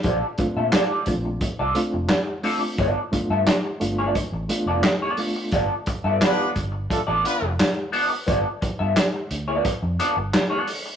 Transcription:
<<
  \new Staff \with { instrumentName = "Clean electric guitar" } { \time 4/4 \key g \mixolydian \tempo 4 = 88 <c' f' a' d''>16 r8 <c' f' a' e''>16 <c' f' a' d''>8 r8. <c' f' a' d''>16 r4 <c' f' a' d''>16 r16 | <b f' a' d''>16 r8 <b f' a' e''>16 r8. <b f' a' d''>16 r8. <b f' a' d''>16 r16 <b f' a' d''>16 r8 | <b f' a' d''>16 r8 <b f' a' e''>16 <b f' a' d''>8 r8. <b f' a' d''>16 r4 <b f' a' d''>16 r16 | <b f' a' d''>16 r8 <b f' a' e''>16 r8. <b f' a' d''>16 r8 <b f' a' d''>16 r8 <b f' a' d''>16 r8 | }
  \new Staff \with { instrumentName = "Horn section" } { \time 4/4 \key g \mixolydian r1 | r1 | r8. <d' a' b' d''>16 <b d' f' b'>8 r8 <a d' f' a'>16 r16 <b d' f' b'>8 r4 | r1 | }
  \new Staff \with { instrumentName = "Reed electric piano" } { \time 4/4 \key g \mixolydian r8 <a c' d' f'>8 r8 <a c' d' f'>8 r8 <a c' d' f'>8 r8 <a c' d' f'>8 | r8 <a b d' f'>8 r8 <a b d' f'>8 r8 <a b d' f'>8 r8 <a b d' f'>8 | r1 | r1 | }
  \new Staff \with { instrumentName = "Fingered electric bass" } { \clef bass \time 4/4 \key g \mixolydian bes,,16 r8 bes,16 r8 bes,,8 r16 c,16 r16 f,,16 r4 | g,,16 r8 g,16 r8 g,,8 r16 a,,16 r16 f,,16 r4 | g,,16 r8 g,16 r8 g,,8 r16 a,,16 r16 f,,16 r4 | g,,16 r8 g,16 r8 d,8 r16 f,16 r16 g,,16 r4 | }
  \new DrumStaff \with { instrumentName = "Drums" } \drummode { \time 4/4 <hh bd>8 <hh bd>8 <hc hh sn>8 <hh bd>8 <hh bd>8 hh8 <hc hh sn>8 hho8 | <hh bd>8 <hh bd>8 <hc hh sn>8 hh8 <hh bd>8 hh8 <hc hh sn>8 hho8 | <hh bd>8 <hh bd>8 <hc hh sn>8 <hh bd>8 <hh bd>8 hh8 <hc hh sn>8 hho8 | <hh bd>8 <hh bd>8 <hc hh sn>8 hh8 <hh bd>8 hh8 <hc hh sn>8 hho8 | }
>>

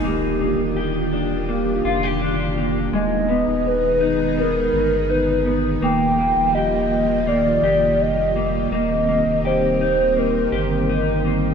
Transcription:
<<
  \new Staff \with { instrumentName = "Soft synth lead" } { \time 4/4 \key ees \major \tempo 4 = 83 g'4. r8 g'4. r8 | ees''4 ces''4 bes'4 ces''8. r16 | g''4 ees''4 d''4 ees''8. r16 | ees''4 c''8 c''8 bes'4. r8 | }
  \new Staff \with { instrumentName = "String machine" } { \time 4/4 \key ees \major << { <bes d' f' g'>1 | <ces' ees' aes' bes''>1 | <bes f' g'>1 | <c' bes'>1 | } \\ { ees1 | ees1~ | ees1~ | ees1 | } >> }
  \new Staff \with { instrumentName = "Clean electric guitar" } { \time 4/4 \key ees \major bes8 bes8 g'8 d'8 bes8 f'16 g'16 d'8 bes8 | aes8 ces'4 ees'8 ces'4 ees'8 ces'8 | bes8 bes8 g'4 bes8 g'4 bes8 | bes8 bes8 g'8 ees'8 bes8 g'8 ees'8 bes8 | }
  \new Staff \with { instrumentName = "Sub bass" } { \clef bass \time 4/4 \key ees \major ees,,8. ees,,16 ees,,4. f,,4. | ees,,8. ees,,16 ees,,4. g,,4. | ees,,8. ees,,16 ees,,4. f,,4. | ees,,8. ees,,16 ees,,4. g,,4. | }
>>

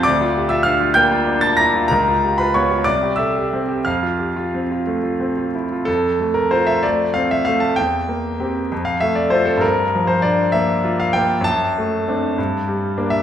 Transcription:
\new Staff \with { instrumentName = "Grand piano" } { \time 6/8 \key f \major \tempo 4. = 64 << { <d'' d'''>8. <e'' e'''>16 <f'' f'''>8 <g'' g'''>8. <a'' a'''>16 <bes'' bes'''>8 | <bes' bes''>8. <ces'' ces'''>16 <des'' des'''>8 <d'' d'''>8 <e'' e'''>4 | <f'' f'''>2~ <f'' f'''>8 r8 | a'8. bes'16 c''16 e''16 d''8 f''16 e''16 f''16 a''16 |
g''4.~ g''16 f''16 e''16 d''16 c''16 a'16 | bes'8. c''16 d''8 e''8. f''16 g''8 | a''2~ a''8. e''16 | } \\ { d,16 f'16 g'16 f'16 d'16 f'16 bes16 f'16 d'16 f'16 e'16 f'16 | des,16 f'16 g'16 f'16 ces'16 f'16 c,16 g'16 a'16 g'16 c'16 g'16 | f,16 f'16 g'16 f'16 c'16 f'16 a16 f'16 c'16 f'16 e'16 f'16 | f,8 a8 f'8 a8 c'8 a8 |
e,8 bes8 <c' g'>8 f,8 a8 <c' f'>8 | g,8 f8 d'8 bes8 f'8 bes8 | fis,8 a8 <c' d'>8 g,8 g8 <bes d'>8 | } >> }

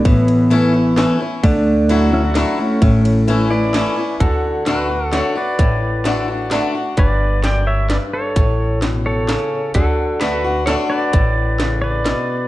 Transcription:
<<
  \new Staff \with { instrumentName = "Pedal steel guitar" } { \time 3/4 \key d \major \tempo 4 = 130 <e b>2~ <e b>8 r8 | <a d'>4. <cis' e'>16 <d' fis'>8. <a cis'>8~ | <a cis'>4. <b' d''>4. | <fis' a'>4 <fis' b'>4 <a' cis''>8 <b' d''>8~ |
<b' d''>2~ <b' d''>8 r8 | <b' d''>4 <d'' g''>8 <cis'' e''>8 <b' d''>8 <a' cis''>8~ | <a' cis''>4 r8 <a' cis''>4. | <fis' a'>4 <fis' b'>4 <a' cis''>8 <b' d''>8~ |
<b' d''>4. <b' d''>4. | }
  \new Staff \with { instrumentName = "Steel-string acoustic guitar" } { \time 3/4 \key d \major << { r4 <e a cis' e'>8 <cis' e'>8 <e a cis' e'>8 <cis' e'>8 | r4 <fis a e' fis'>4 <fis a e' fis'>8 <e' fis'>8 | r4 <e a cis' e'>8 <cis' e'>8 <e a cis' e'>8 <cis' e'>8 | r4 <d a d' fis'>8 <d' fis'>8 <d a d' fis'>8 <d' fis'>8 |
r4 <d a d' fis'>8 <d' fis'>8 <d a d' fis'>8 <d' fis'>8 | r2. | r2. | r4 <d a d' fis'>8 <d' fis'>8 <d a d' fis'>4 |
r2. | } \\ { a,2 r4 | d2 r4 | a,2 r4 | d2 r4 |
a,2 r4 | g,4 fis,4 g,4 | a,4 b,4 cis4 | d2 r4 |
a,4 cis4 b,4 | } >> }
  \new Staff \with { instrumentName = "Upright bass" } { \clef bass \time 3/4 \key d \major a,,2. | d,2. | a,,2. | d,2. |
a,,2. | g,,2. | a,,2. | d,2. |
a,,2. | }
  \new DrumStaff \with { instrumentName = "Drums" } \drummode { \time 3/4 <bd cymr>8 cymr8 cymr4 <cymr sn>4 | <bd cymr>4 cymr4 <cymr sn>4 | <bd cymr>8 cymr8 cymr4 <cymr sn>4 | <hh bd>4 <hh sn>4 <hh sn>4 |
<hh bd>4 <hh sn>4 <hh sn>4 | <hh bd>4 <hh sn>4 <hh sn>4 | <hh bd>4 <hh sn>4 <hh sn>4 | <hh bd>4 <hh sn>4 <hh sn>4 |
<hh bd>4 <hh sn>4 <hh sn>4 | }
>>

